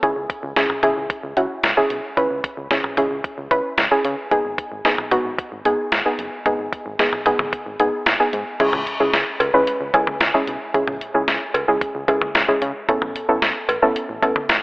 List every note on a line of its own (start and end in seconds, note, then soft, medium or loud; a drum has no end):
0.03 0.13 C#2 loud
0.03 0.33 C#4 medium
0.03 0.33 E4 medium
0.03 0.33 G#4 medium
0.03 kick loud
0.03 closed hi-hat medium
0.16 0.27 C#2 medium
0.30 kick medium
0.30 closed hi-hat medium
0.43 0.54 C#2 loud
0.56 0.67 C#2 loud
0.56 0.72 C#4 medium
0.56 0.72 E4 medium
0.56 0.72 G#4 medium
0.56 snare loud
0.56 closed hi-hat medium
0.70 mid tom medium
0.83 0.94 C#2 loud
0.83 1.14 C#4 medium
0.83 1.14 E4 medium
0.83 1.14 G#4 loud
0.83 closed hi-hat medium
0.83 mid tom loud
0.97 1.07 C#2 medium
1.10 kick loud
1.10 closed hi-hat medium
1.23 1.34 C#2 loud
1.37 1.47 C#2 medium
1.37 1.60 C#4 medium
1.37 1.60 E4 medium
1.37 1.60 F#4 loud
1.37 closed hi-hat medium
1.63 1.74 C#2 loud
1.63 snare loud
1.63 closed hi-hat medium
1.77 2.00 C#4 medium
1.77 2.00 E4 medium
1.77 2.00 G#4 medium
1.90 2.01 B1 medium
1.90 closed hi-hat medium
2.17 2.28 C#2 loud
2.17 2.48 C#4 medium
2.17 2.48 E4 medium
2.17 2.48 B4 medium
2.17 kick loud
2.17 closed hi-hat medium
2.31 2.41 C#2 loud
2.44 kick medium
2.44 closed hi-hat medium
2.57 2.68 C#2 loud
2.71 2.81 C#2 loud
2.71 2.86 C#4 medium
2.71 2.86 E4 medium
2.71 2.86 G#4 medium
2.71 snare loud
2.71 closed hi-hat medium
2.84 mid tom medium
2.97 3.08 C#2 loud
2.97 3.28 C#4 medium
2.97 3.28 E4 medium
2.97 3.28 G#4 medium
2.97 closed hi-hat medium
2.97 mid tom loud
3.11 3.21 C#2 loud
3.24 kick loud
3.24 closed hi-hat medium
3.38 3.48 C#2 loud
3.51 3.62 C#2 loud
3.51 3.74 C#4 medium
3.51 3.74 E4 medium
3.51 3.74 B4 loud
3.51 kick medium
3.51 closed hi-hat medium
3.78 3.88 C#2 loud
3.78 snare loud
3.78 closed hi-hat medium
3.91 4.14 C#4 medium
3.91 4.14 E4 medium
3.91 4.14 G#4 medium
4.05 4.15 C#3 loud
4.05 closed hi-hat medium
4.31 4.42 G#1 loud
4.31 4.62 B3 medium
4.31 4.62 D#4 medium
4.31 4.62 G#4 loud
4.31 kick loud
4.31 closed hi-hat medium
4.45 4.55 G#1 loud
4.58 kick medium
4.58 closed hi-hat medium
4.72 4.82 G#1 loud
4.85 4.96 G#1 loud
4.85 5.00 B3 medium
4.85 5.00 D#4 medium
4.85 5.00 G#4 loud
4.85 snare loud
4.85 closed hi-hat medium
4.98 mid tom medium
5.11 5.22 G#1 loud
5.11 5.42 B3 medium
5.11 5.42 D#4 medium
5.11 5.42 F#4 loud
5.11 closed hi-hat medium
5.11 mid tom medium
5.25 5.36 G#1 loud
5.38 kick loud
5.38 closed hi-hat medium
5.52 5.62 G#1 medium
5.65 5.76 G#1 loud
5.65 5.88 B3 medium
5.65 5.88 D#4 medium
5.65 5.88 G#4 loud
5.65 closed hi-hat medium
5.92 6.03 G#1 loud
5.92 snare loud
5.92 closed hi-hat medium
6.06 6.28 B3 medium
6.06 6.28 D#4 medium
6.06 6.28 G#4 medium
6.19 6.29 F#1 loud
6.19 closed hi-hat medium
6.46 6.56 G#1 loud
6.46 6.76 B3 medium
6.46 6.76 D#4 medium
6.46 6.76 G#4 loud
6.46 kick loud
6.46 closed hi-hat medium
6.59 6.70 G#1 medium
6.73 kick medium
6.73 closed hi-hat medium
6.86 6.96 G#1 loud
6.99 7.10 G#1 loud
6.99 7.15 B3 medium
6.99 7.15 D#4 medium
6.99 7.15 G#4 medium
6.99 snare loud
6.99 closed hi-hat medium
7.13 mid tom medium
7.26 7.37 G#1 loud
7.26 7.57 B3 medium
7.26 7.57 D#4 medium
7.26 7.57 G#4 loud
7.26 closed hi-hat medium
7.26 mid tom loud
7.39 7.50 G#1 loud
7.39 mid tom loud
7.53 kick loud
7.53 closed hi-hat medium
7.66 7.77 G#1 loud
7.80 7.90 G#1 loud
7.80 8.03 B3 medium
7.80 8.03 D#4 medium
7.80 8.03 G#4 loud
7.80 closed hi-hat medium
8.06 8.17 G#1 loud
8.06 snare loud
8.06 closed hi-hat medium
8.20 8.43 B3 medium
8.20 8.43 D#4 medium
8.20 8.43 G#4 medium
8.33 8.44 G#2 medium
8.33 closed hi-hat medium
8.60 8.71 C#2 loud
8.60 8.83 G#3 medium
8.60 8.83 C#4 medium
8.60 8.83 E4 medium
8.60 8.83 G#4 loud
8.60 kick loud
8.60 closed hi-hat medium
8.60 crash loud
8.73 8.84 C#2 loud
8.73 mid tom loud
8.87 closed hi-hat medium
9.00 9.11 C#2 loud
9.00 9.31 G#3 medium
9.00 9.31 C#4 medium
9.00 9.31 E4 medium
9.00 9.31 G#4 loud
9.14 9.24 C#2 loud
9.14 snare loud
9.14 closed hi-hat medium
9.40 9.51 C#2 loud
9.40 closed hi-hat medium
9.40 cowbell medium
9.54 9.64 C#2 loud
9.54 9.77 G#3 medium
9.54 9.77 C#4 medium
9.54 9.77 E4 medium
9.54 9.77 B4 loud
9.67 closed hi-hat medium
9.81 9.91 C#2 loud
9.94 10.04 C#2 loud
9.94 10.17 G#3 medium
9.94 10.17 C#4 medium
9.94 10.17 E4 medium
9.94 10.17 G#4 medium
9.94 kick medium
9.94 closed hi-hat medium
9.94 cowbell medium
10.07 mid tom medium
10.21 10.31 C#2 loud
10.21 snare loud
10.21 closed hi-hat medium
10.34 10.57 G#3 medium
10.34 10.57 C#4 medium
10.34 10.57 E4 medium
10.34 10.57 G#4 medium
10.47 10.58 B1 medium
10.47 closed hi-hat medium
10.74 10.85 C#2 loud
10.74 10.97 G#3 medium
10.74 10.97 C#4 medium
10.74 10.97 E4 medium
10.74 10.97 G#4 loud
10.74 kick loud
10.74 closed hi-hat medium
10.87 10.98 C#2 medium
10.87 mid tom loud
11.01 closed hi-hat medium
11.14 11.25 C#2 loud
11.14 11.45 G#3 medium
11.14 11.45 C#4 medium
11.14 11.45 E4 medium
11.14 11.45 G#4 medium
11.28 11.38 C#2 loud
11.28 snare loud
11.28 closed hi-hat medium
11.54 11.65 C#2 loud
11.54 closed hi-hat medium
11.54 cowbell medium
11.68 11.79 C#2 loud
11.68 11.91 G#3 medium
11.68 11.91 C#4 medium
11.68 11.91 E4 medium
11.68 11.91 G#4 loud
11.81 kick loud
11.81 closed hi-hat medium
11.95 12.05 C#2 loud
12.08 12.19 C#2 loud
12.08 12.31 G#3 medium
12.08 12.31 C#4 medium
12.08 12.31 E4 medium
12.08 12.31 G#4 medium
12.08 kick loud
12.08 closed hi-hat medium
12.08 cowbell medium
12.22 mid tom loud
12.35 12.46 C#2 loud
12.35 snare loud
12.35 closed hi-hat medium
12.48 12.71 G#3 medium
12.48 12.71 C#4 medium
12.48 12.71 E4 medium
12.48 12.71 G#4 medium
12.62 12.72 C#3 loud
12.62 closed hi-hat medium
12.89 12.99 A1 loud
12.89 13.11 B3 medium
12.89 13.11 C#4 medium
12.89 13.11 E4 medium
12.89 13.11 A4 loud
12.89 kick loud
12.89 closed hi-hat medium
13.02 13.12 A1 loud
13.02 mid tom loud
13.16 closed hi-hat medium
13.29 13.39 A1 loud
13.29 13.59 B3 medium
13.29 13.59 C#4 medium
13.29 13.59 E4 medium
13.29 13.59 A4 medium
13.42 13.53 A1 loud
13.42 snare loud
13.42 closed hi-hat medium
13.69 13.79 A1 loud
13.69 closed hi-hat medium
13.69 cowbell medium
13.82 13.93 A1 loud
13.82 14.05 B3 medium
13.82 14.05 C#4 medium
13.82 14.05 E4 medium
13.82 14.05 A4 medium
13.96 closed hi-hat medium
14.09 14.20 A1 loud
14.22 14.33 A1 loud
14.22 14.45 B3 medium
14.22 14.45 C#4 medium
14.22 14.45 E4 medium
14.22 14.45 A4 loud
14.22 kick loud
14.22 closed hi-hat medium
14.22 cowbell medium
14.36 mid tom medium
14.49 14.60 A1 loud
14.49 snare loud
14.49 closed hi-hat medium